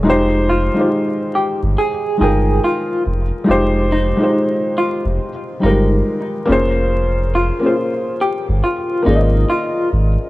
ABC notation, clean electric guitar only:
X:1
M:4/4
L:1/16
Q:"Swing 16ths" 1/4=70
K:Fm
V:1 name="Clean electric guitar"
z2 F2 z2 G z A2 A2 F2 z2 | z2 E2 z2 F z3 E z4 z | z2 F2 z2 G z F2 E2 F2 z2 |]